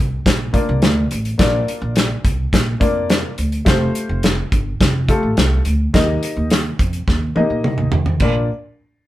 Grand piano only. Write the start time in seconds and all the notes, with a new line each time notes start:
0.53 A#3 D4 F4 D5
1.38 A#3 D4 F4 D5
2.80 A#3 D4 F4 D5
3.65 A3 F4 G4 C5
5.09 A3 F4 G4 A4
5.93 A#3 D#4 G4 D#5
7.35 A#3 D#4 G4 D#5
8.22 A#3 D4 F4 D5